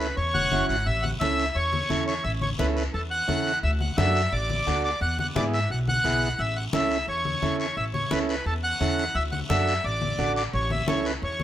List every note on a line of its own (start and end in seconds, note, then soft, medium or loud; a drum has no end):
0.00 0.11 C#2 medium
0.00 0.16 B4 medium
0.00 short guiro medium
0.17 0.31 E2 medium
0.17 0.65 C#5 medium
0.17 high conga soft
0.17 long guiro medium
0.34 0.50 E1 medium
0.34 0.67 F#5 loud
0.34 high conga medium
0.51 0.67 F#1 medium
0.51 0.76 C#4 medium
0.51 0.76 E4 medium
0.51 0.77 F#4 medium
0.51 high conga medium
0.51 short guiro medium
0.69 0.85 G#1 medium
0.69 0.87 F#5 medium
0.69 short guiro medium
0.86 1.14 A1 medium
0.86 1.04 E5 loud
0.86 high conga soft
0.86 long guiro medium
1.02 1.11 F#5 medium
1.02 high conga medium
1.20 1.49 C#2 medium
1.20 1.45 C#4 medium
1.20 1.45 E4 medium
1.20 1.46 A4 medium
1.20 1.56 E5 loud
1.20 high conga medium
1.20 short guiro medium
1.39 short guiro medium
1.55 1.83 E2 medium
1.55 2.04 C#5 medium
1.55 high conga soft
1.55 long guiro medium
1.73 high conga medium
1.89 2.18 E2 medium
1.89 2.14 C#4 medium
1.89 2.14 E4 medium
1.89 2.14 A4 medium
1.89 high conga medium
1.89 short guiro medium
2.07 2.24 C#5 medium
2.07 short guiro medium
2.24 2.52 A1 loud
2.24 2.32 E5 medium
2.24 high conga soft
2.24 long guiro medium
2.41 2.50 C#5 medium
2.41 high conga medium
2.59 2.87 C#2 medium
2.59 2.83 C#4 medium
2.59 2.84 E4 medium
2.59 2.84 A4 medium
2.59 2.67 B4 medium
2.59 high conga medium
2.59 short guiro medium
2.76 2.84 B4 medium
2.76 short guiro medium
2.94 3.22 E2 medium
2.94 3.02 A4 medium
2.94 high conga soft
2.94 long guiro medium
3.11 3.59 F#5 loud
3.28 3.56 E2 medium
3.28 3.52 C#4 medium
3.28 3.52 E4 medium
3.28 3.53 A4 medium
3.28 high conga medium
3.28 short guiro medium
3.46 short guiro medium
3.63 3.91 D2 loud
3.63 3.71 E5 medium
3.63 high conga soft
3.63 long guiro medium
3.80 3.96 F#5 medium
3.80 high conga medium
3.97 4.25 F#2 loud
3.97 4.21 D4 medium
3.97 4.22 F#4 medium
3.97 4.22 A4 medium
3.97 4.33 E5 loud
3.97 high conga medium
3.97 short guiro medium
4.15 short guiro medium
4.32 4.60 A1 medium
4.32 4.83 D5 medium
4.32 high conga soft
4.32 long guiro medium
4.50 high conga medium
4.66 4.94 D2 medium
4.66 4.90 D4 medium
4.66 4.91 F#4 medium
4.66 4.91 A4 medium
4.66 high conga medium
4.66 short guiro medium
4.84 5.00 D5 medium
4.84 short guiro medium
5.01 5.29 E2 loud
5.01 5.17 F#5 medium
5.01 high conga soft
5.01 long guiro medium
5.19 5.27 F#5 medium
5.19 high conga medium
5.35 5.63 G#2 loud
5.35 5.60 B3 medium
5.35 5.60 E4 medium
5.35 5.60 G#4 medium
5.35 5.44 D5 medium
5.35 high conga medium
5.35 short guiro medium
5.53 5.69 E5 medium
5.53 short guiro medium
5.70 5.98 B1 medium
5.70 5.79 F#5 medium
5.70 high conga soft
5.70 long guiro medium
5.88 6.41 F#5 loud
5.88 high conga medium
6.04 6.32 B1 medium
6.04 6.28 B3 medium
6.04 6.29 E4 medium
6.04 6.29 G#4 medium
6.04 high conga medium
6.04 short guiro medium
6.22 short guiro medium
6.39 6.66 A1 loud
6.39 6.57 E5 medium
6.39 high conga soft
6.39 long guiro medium
6.56 6.64 F#5 medium
6.73 7.01 C#2 medium
6.73 6.98 C#4 medium
6.73 6.98 E4 medium
6.73 6.98 A4 medium
6.73 7.06 E5 medium
6.73 high conga medium
6.73 short guiro medium
6.91 short guiro medium
7.08 7.35 E2 medium
7.08 7.56 C#5 medium
7.08 high conga soft
7.08 long guiro medium
7.25 high conga medium
7.42 7.70 E2 medium
7.42 7.66 C#4 medium
7.42 7.67 E4 medium
7.42 7.67 A4 medium
7.42 high conga medium
7.42 short guiro medium
7.60 7.76 C#5 medium
7.60 short guiro medium
7.77 8.05 A1 loud
7.77 7.85 E5 medium
7.77 high conga soft
7.77 long guiro medium
7.94 8.12 C#5 medium
7.94 high conga medium
8.11 8.39 C#2 medium
8.11 8.36 C#4 medium
8.11 8.36 E4 medium
8.11 8.36 A4 medium
8.11 8.19 B4 medium
8.11 high conga medium
8.11 short guiro medium
8.29 8.45 B4 medium
8.29 short guiro medium
8.46 8.73 E2 medium
8.46 8.54 A4 medium
8.46 high conga soft
8.46 long guiro medium
8.63 9.17 F#5 loud
8.80 9.08 E2 medium
8.80 9.05 C#4 medium
8.80 9.05 E4 medium
8.80 9.05 A4 medium
8.80 high conga medium
8.80 short guiro medium
8.99 short guiro medium
9.15 9.43 D2 loud
9.15 9.23 E5 loud
9.15 high conga soft
9.15 long guiro medium
9.32 9.40 F#5 medium
9.32 high conga medium
9.49 9.77 F#2 medium
9.49 9.74 D4 medium
9.49 9.74 F#4 medium
9.49 9.74 A4 medium
9.49 9.85 E5 medium
9.49 high conga medium
9.49 short guiro medium
9.68 short guiro medium
9.84 10.12 A1 medium
9.84 10.33 D5 medium
9.84 high conga soft
9.84 long guiro medium
10.02 high conga medium
10.18 10.46 A1 medium
10.18 10.43 D4 medium
10.18 10.43 F#4 medium
10.18 10.43 A4 medium
10.18 high conga medium
10.18 short guiro medium
10.36 10.44 D5 medium
10.36 short guiro medium
10.53 10.81 A1 medium
10.53 10.71 C#5 medium
10.53 high conga soft
10.53 long guiro medium
10.70 10.87 E5 medium
10.70 high conga medium
10.87 11.16 C#2 medium
10.87 11.12 C#4 medium
10.87 11.12 E4 medium
10.87 11.12 A4 medium
10.87 11.06 C#5 medium
10.87 high conga medium
10.87 short guiro medium
11.05 11.13 B4 medium
11.05 short guiro medium
11.22 11.43 E2 medium
11.22 11.43 C#5 medium
11.22 high conga soft
11.22 long guiro medium
11.40 high conga medium